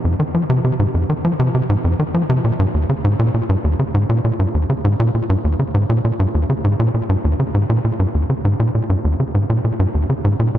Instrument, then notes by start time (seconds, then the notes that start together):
analog synth bass
0.05 F2
0.20 D#3
0.35 F3
0.50 C3
0.65 C3
0.80 G#2
0.94 F2
1.10 D#3
1.25 F3
1.40 C3
1.55 C3
1.70 G#2
1.85 F2
2.00 D#3
2.14 F3
2.30 C3
2.44 A#2
2.59 G2
2.74 D#2
2.89 C#3
3.04 G#2
3.19 A#2
3.34 A#2
3.49 G2
3.64 D#2
3.79 C#3
3.94 G#2
4.09 A#2
4.25 A#2
4.39 G2
4.55 D#2
4.70 C#3
4.85 G#2
5.00 A#2
5.15 A#2
5.30 G2
5.45 D#2
5.59 C#3
5.74 G#2
5.90 A#2
6.05 A#2
6.20 G2
6.35 D#2
6.50 C#3
6.64 G#2
6.80 A#2
6.94 A#2
7.09 G2
7.25 D#2
7.40 C#3
7.55 G#2
7.70 A#2
7.85 A#2
8.00 G2
8.15 D#2
8.30 C#3
8.45 G#2
8.60 A#2
8.75 A#2
8.90 G2
9.05 D#2
9.20 C#3
9.35 G#2
9.50 A#2
9.65 A#2
9.80 G2
9.95 D#2
10.10 C#3
10.25 G#2
10.40 A#2
10.55 A#2